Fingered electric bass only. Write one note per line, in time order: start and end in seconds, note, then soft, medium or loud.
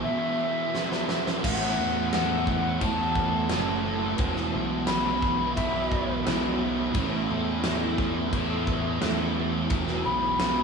1.45 1.75 A1 loud
1.79 2.78 E2 medium
2.82 3.53 E2 loud
3.51 4.16 F#1 loud
4.19 4.51 E1 loud
4.54 5.54 B1 medium
5.57 6.22 B1 loud
6.27 6.92 B1 medium
6.95 7.26 A1 medium
7.30 8.29 E2 medium
8.33 8.98 E2 loud
9.03 9.67 E2 medium
9.71 10.02 E1 loud
10.06 10.63 B1 medium